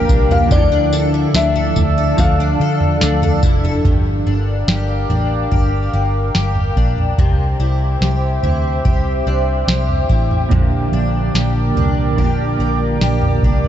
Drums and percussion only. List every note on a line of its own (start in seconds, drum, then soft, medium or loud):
0.09 kick medium
0.09 tambourine medium
0.31 floor tom medium
0.51 kick loud
0.51 floor tom loud
0.51 tambourine medium
0.93 tambourine medium
1.34 snare loud
1.34 tambourine loud
1.76 floor tom medium
1.76 tambourine medium
2.18 kick medium
2.18 floor tom medium
2.18 tambourine medium
2.80 floor tom medium
3.01 snare loud
3.01 tambourine medium
3.22 floor tom medium
3.43 kick medium
3.43 tambourine medium
3.64 floor tom medium
3.85 kick loud
3.85 floor tom loud
4.68 snare medium
5.10 floor tom soft
5.51 kick medium
5.51 floor tom medium
6.35 snare medium
6.55 floor tom medium
6.76 kick medium
6.98 floor tom medium
7.18 kick loud
7.18 floor tom loud
8.02 snare medium
8.43 floor tom medium
8.85 kick medium
8.85 floor tom medium
9.68 snare loud
9.89 floor tom medium
10.10 kick medium
10.31 floor tom medium
10.52 kick loud
10.52 floor tom loud
11.35 snare loud
11.77 floor tom medium
12.18 kick medium
12.18 floor tom medium
13.01 snare medium
13.22 floor tom medium
13.43 kick medium
13.64 floor tom medium